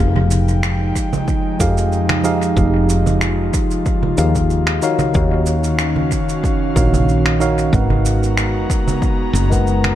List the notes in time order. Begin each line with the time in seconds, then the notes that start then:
Already playing: F3 D#4
0.00 F1 F3 G#3 D#4 G4 G#4 F5 G5
0.16 low conga
0.31 cabasa
0.48 cabasa
0.63 finger snap, cabasa
0.96 kick, cabasa
1.13 low conga, cabasa
1.28 kick, cabasa
1.59 F2 F3 D#4 G4 G#4 F5, kick, cabasa
1.77 cabasa
1.92 cabasa
2.09 finger snap, low conga
2.23 F3 D#4 G4 G#4 F5, cabasa
2.42 cabasa
2.55 F1 F3 D#4 F4 G4 G#4 F5, kick, cabasa
2.89 cabasa
3.06 low conga, cabasa
3.21 finger snap, cabasa
3.53 kick, cabasa
3.71 cabasa
3.86 kick, cabasa
4.03 low conga
4.17 D#2 F3 D#4 G4 G#4 F5, cabasa
4.35 kick, cabasa
4.50 cabasa
4.67 finger snap
4.82 D#3 C#4 D#4 F#4 C#5 F5, cabasa
4.99 low conga, cabasa
5.13 D#2 D#3 D#4 F#4 C#5 F5, kick, cabasa
5.46 cabasa
5.64 cabasa
5.79 finger snap, cabasa
5.96 low conga
6.11 kick, cabasa
6.29 cabasa
6.44 kick, cabasa
6.76 A#1 D#3 D#4 F#4 C#5 F5, kick, cabasa
6.94 low conga, cabasa
7.09 cabasa
7.26 finger snap
7.40 D#3 D#4 F#4 C#5 F5, cabasa
7.58 cabasa
7.72 G#1 G#3 B3 D#4 F#4 A#4 B4 F#5 A#5, kick, cabasa
7.90 low conga
8.05 cabasa
8.23 cabasa
8.37 finger snap, cabasa
8.70 kick, cabasa
8.88 low conga, cabasa
9.02 kick, cabasa
9.33 F#1, cabasa
9.50 G#3 D#4 A#4 B4 F#5, kick, cabasa
9.67 cabasa
9.84 finger snap, low conga